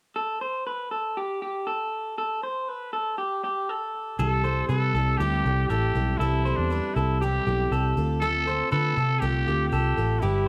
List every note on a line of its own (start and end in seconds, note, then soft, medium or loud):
0.16 0.41 A4 medium
0.41 0.66 C5 medium
0.67 0.91 B4 medium
0.91 1.17 A4 medium
1.17 1.41 G4 medium
1.42 1.67 G4 medium
1.67 2.14 A4 medium
2.18 2.43 A4 medium
2.43 2.68 C5 medium
2.68 2.93 B4 medium
2.93 3.18 A4 medium
3.18 3.43 G4 medium
3.44 3.69 G4 medium
3.69 4.16 A4 medium
4.19 4.62 C2 medium
4.19 4.44 C3 medium
4.19 4.45 E3 medium
4.19 4.44 G3 medium
4.19 4.44 C4 medium
4.19 4.43 E4 medium
4.19 4.66 A4 loud
4.19 4.44 A4 medium
4.19 4.43 A4 medium
4.44 4.68 G3 soft
4.44 4.69 C4 soft
4.44 4.69 E4 soft
4.44 4.69 A4 soft
4.44 4.70 C5 medium
4.68 4.91 C3 medium
4.68 4.95 G3 medium
4.68 4.95 C4 medium
4.68 4.95 E4 medium
4.68 5.19 A4 medium
4.68 4.94 A4 medium
4.68 4.94 B4 medium
4.94 5.16 C2 medium
4.94 5.19 G3 soft
4.94 5.20 C4 soft
4.94 5.20 E4 soft
4.94 5.20 A4 medium
4.94 5.20 A4 soft
5.17 5.41 D2 medium
5.17 5.45 C3 medium
5.17 5.45 E3 medium
5.17 5.46 G3 medium
5.17 5.45 C4 medium
5.17 5.45 E4 medium
5.17 5.68 G4 loud
5.17 5.44 G4 medium
5.17 5.44 A4 medium
5.45 5.67 C2 medium
5.45 5.69 G3 soft
5.45 5.69 C4 soft
5.45 5.70 E4 soft
5.45 5.70 G4 medium
5.45 5.70 A4 soft
5.68 5.92 A1 medium
5.68 5.95 G3 soft
5.68 5.95 C4 medium
5.68 5.95 E4 medium
5.68 6.19 G4 medium
5.68 6.17 A4 medium
5.68 5.94 A4 medium
5.95 6.17 B1 medium
5.95 6.20 G3 soft
5.95 6.20 C4 soft
5.95 6.21 E4 soft
5.95 6.20 A4 soft
6.18 6.53 C2 medium
6.18 6.46 C3 medium
6.18 6.46 E3 medium
6.18 6.46 G3 medium
6.18 6.46 C4 medium
6.18 6.58 E4 medium
6.18 6.45 E4 medium
6.18 6.45 A4 medium
6.22 6.44 A4 medium
6.45 6.69 G3 soft
6.45 6.70 C4 soft
6.45 6.71 E4 soft
6.45 6.71 A4 medium
6.45 6.71 C5 medium
6.56 6.80 E2 medium
6.56 6.96 D4 medium
6.70 6.96 G3 medium
6.70 6.96 C4 medium
6.70 6.96 E4 medium
6.70 6.95 A4 medium
6.70 6.96 B4 medium
6.95 7.39 C2 medium
6.95 7.21 G3 soft
6.95 7.22 C4 soft
6.95 7.20 E4 medium
6.95 7.22 E4 soft
6.95 7.21 A4 soft
6.95 7.21 A4 medium
7.21 7.47 C3 medium
7.21 7.47 E3 medium
7.21 7.47 G3 medium
7.21 7.47 C4 medium
7.21 7.47 E4 medium
7.21 7.92 G4 medium
7.21 7.46 G4 medium
7.21 7.45 A4 medium
7.47 7.68 B1 medium
7.47 7.71 G3 soft
7.47 7.71 C4 soft
7.47 7.72 E4 soft
7.47 7.72 G4 medium
7.47 7.72 A4 soft
7.71 7.93 C2 medium
7.71 7.97 C4 medium
7.71 7.98 E4 medium
7.71 8.19 A4 medium
7.71 7.96 A4 medium
7.97 8.61 D2 medium
7.97 8.21 C4 soft
7.97 8.22 F4 medium
7.97 8.22 A4 medium
8.21 8.47 D3 medium
8.21 8.47 A3 medium
8.21 8.47 C4 medium
8.21 8.47 F4 medium
8.21 8.68 A4 loud
8.21 8.47 A4 medium
8.21 8.46 A4 medium
8.47 8.71 C4 soft
8.47 8.71 F4 soft
8.47 8.72 A4 soft
8.47 8.71 C5 medium
8.71 8.94 D3 loud
8.71 8.97 A3 medium
8.71 8.96 F4 medium
8.71 9.21 A4 loud
8.71 8.95 A4 medium
8.71 8.97 B4 medium
8.97 9.19 C3 medium
8.97 9.21 C4 soft
8.97 9.21 F4 soft
8.97 9.23 A4 medium
9.20 9.44 C2 medium
9.20 9.47 D3 medium
9.20 9.47 A3 medium
9.20 9.47 C4 medium
9.20 9.47 F4 medium
9.20 9.68 G4 loud
9.20 9.47 G4 medium
9.20 9.46 A4 medium
9.47 9.69 D2 medium
9.47 9.71 C4 soft
9.47 9.72 F4 soft
9.47 9.73 G4 medium
9.47 9.73 A4 soft
9.69 9.94 C2 medium
9.69 9.97 A3 medium
9.69 9.98 C4 medium
9.69 10.21 G4 medium
9.73 9.97 F4 medium
9.73 10.20 A4 medium
9.73 9.96 A4 medium
9.97 10.19 A1 medium
9.97 10.22 C4 soft
9.97 10.22 F4 soft
9.97 10.23 A4 medium
10.20 10.48 G1 medium
10.20 10.47 G3 medium
10.20 10.48 D4 medium
10.20 10.48 E4 medium
10.20 10.48 G4 medium
10.20 10.47 G4 medium
10.20 10.46 B4 medium